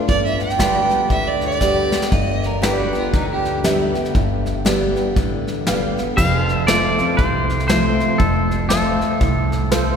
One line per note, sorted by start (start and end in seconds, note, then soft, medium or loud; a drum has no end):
0.08 0.89 G1 medium
0.08 1.06 G2 medium
0.08 0.24 D5 loud
0.08 kick loud
0.08 snare soft
0.25 0.42 E5 medium
0.40 1.08 G5 loud
0.40 snare soft
0.50 snare soft
0.59 0.89 D3 medium
0.59 0.89 G3 medium
0.59 0.89 B3 medium
0.59 0.84 F4 medium
0.59 1.01 G4 medium
0.59 0.88 G4 medium
0.59 1.01 B4 medium
0.59 2.10 B4 medium
0.59 1.01 D5 medium
0.59 2.11 D5 medium
0.59 kick medium
0.59 snare loud
0.59 hi-hat pedal medium
0.84 2.10 G4 medium
0.90 1.10 B3 medium
0.90 1.09 G4 medium
0.90 snare soft
1.10 1.91 D2 medium
1.10 1.60 D3 medium
1.10 1.29 E5 medium
1.10 kick loud
1.10 snare soft
1.28 1.44 D5 medium
1.41 2.10 D5 loud
1.41 snare soft
1.51 snare soft
1.61 1.90 D3 medium
1.61 1.91 G3 medium
1.61 1.91 B3 medium
1.61 2.02 G4 medium
1.61 1.90 G4 medium
1.61 2.02 B4 medium
1.61 2.02 D5 medium
1.61 kick medium
1.61 snare medium
1.61 hi-hat pedal medium
1.91 2.12 B3 soft
1.91 2.11 G4 medium
1.91 snare medium
2.02 snare medium
2.12 2.93 G1 medium
2.12 3.09 G2 medium
2.12 2.47 D#5 medium
2.12 kick loud
2.12 snare soft
2.43 2.65 A#4 medium
2.43 snare soft
2.62 2.92 D3 medium
2.62 2.92 G3 medium
2.62 2.92 B3 medium
2.62 6.14 G4 medium
2.62 3.04 G4 medium
2.62 2.81 G4 medium
2.62 2.92 G4 loud
2.62 3.04 B4 medium
2.62 6.14 B4 medium
2.62 3.04 D5 medium
2.62 6.15 D5 medium
2.62 snare loud
2.62 hi-hat pedal medium
2.80 2.96 F#4 medium
2.93 3.13 B3 soft
2.93 3.13 F4 medium
2.93 3.12 G4 medium
2.93 snare soft
3.14 3.94 D2 medium
3.14 3.63 D3 medium
3.14 3.30 D#4 medium
3.14 kick loud
3.14 snare soft
3.31 3.57 G4 medium
3.45 snare soft
3.64 3.93 D3 medium
3.64 3.94 G3 medium
3.64 3.94 B3 medium
3.64 4.05 G4 medium
3.64 3.93 G4 medium
3.64 4.05 B4 medium
3.64 4.05 E5 loud
3.64 snare loud
3.64 hi-hat pedal medium
3.94 4.14 B3 medium
3.94 4.13 G4 medium
3.94 snare soft
4.05 snare soft
4.15 4.95 G1 medium
4.15 5.12 G2 medium
4.15 kick loud
4.15 snare soft
4.46 snare soft
4.65 4.95 D3 medium
4.65 4.95 G3 loud
4.65 4.95 B3 loud
4.65 5.07 G4 medium
4.65 4.95 G4 medium
4.65 5.07 B4 medium
4.65 5.07 D5 medium
4.65 snare loud
4.65 hi-hat pedal medium
4.96 5.16 B3 soft
4.96 5.15 G4 medium
4.96 snare soft
5.16 5.59 A1 medium
5.16 5.65 D3 medium
5.16 kick loud
5.16 snare soft
5.47 snare soft
5.67 6.10 G1 medium
5.67 5.96 D3 medium
5.67 5.97 G3 medium
5.67 5.97 B3 medium
5.67 6.08 G4 medium
5.67 5.96 G4 medium
5.67 6.08 B4 medium
5.67 6.08 F5 loud
5.67 snare loud
5.67 hi-hat pedal medium
5.97 6.17 B3 soft
5.97 6.16 G4 medium
5.97 snare soft
6.17 6.98 F1 medium
6.17 7.15 F2 medium
6.17 6.42 G4 medium
6.17 6.38 B4 medium
6.17 6.67 F5 loud
6.17 9.96 F5 medium
6.17 kick loud
6.17 snare soft
6.17 crash loud
6.38 9.96 C5 medium
6.42 9.96 A4 medium
6.49 snare soft
6.67 6.97 F3 medium
6.67 6.98 A3 medium
6.67 6.98 C4 medium
6.67 7.09 F4 medium
6.67 6.97 F4 medium
6.67 7.09 A4 medium
6.67 7.09 C5 medium
6.67 7.15 D5 loud
6.67 snare loud
6.67 hi-hat pedal medium
6.98 7.19 C4 medium
6.98 7.18 F4 medium
6.98 snare soft
7.17 7.99 C2 medium
7.17 8.16 C3 medium
7.17 7.67 C5 loud
7.17 kick loud
7.17 snare soft
7.50 snare soft
7.60 snare soft
7.68 8.18 F3 medium
7.68 8.18 A3 medium
7.68 8.18 C4 loud
7.68 8.10 F4 medium
7.68 8.19 F4 medium
7.68 8.10 A4 medium
7.68 8.21 C5 loud
7.68 8.10 C5 medium
7.68 snare loud
7.68 hi-hat pedal medium
8.00 snare soft
8.18 9.00 F1 medium
8.18 9.17 F2 medium
8.18 8.66 A4 medium
8.18 kick loud
8.18 snare soft
8.51 snare soft
8.69 9.19 F3 medium
8.69 9.19 A3 medium
8.69 9.20 C4 medium
8.69 9.12 F4 medium
8.69 9.20 F4 loud
8.69 9.96 A4 medium
8.69 9.12 A4 medium
8.69 9.12 C5 medium
8.69 snare loud
8.69 hi-hat pedal medium
9.01 snare soft
9.21 9.96 C2 medium
9.21 9.70 A2 medium
9.21 kick loud
9.21 snare soft
9.52 snare soft
9.71 9.96 B2 medium
9.71 9.96 F4 medium
9.71 9.96 A4 medium
9.71 9.96 C5 loud
9.71 snare loud
9.71 hi-hat pedal medium